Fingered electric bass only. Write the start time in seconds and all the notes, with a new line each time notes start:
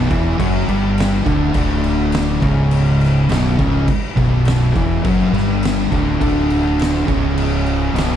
0.10 E1
0.39 F#1
0.68 G1
1.26 D1
1.55 D1
2.42 C#1
3.30 B0
3.59 C#1
4.17 B0
4.75 E1
5.04 F#1
5.33 G1
5.92 D1
6.21 D1
7.08 C#1
7.94 B0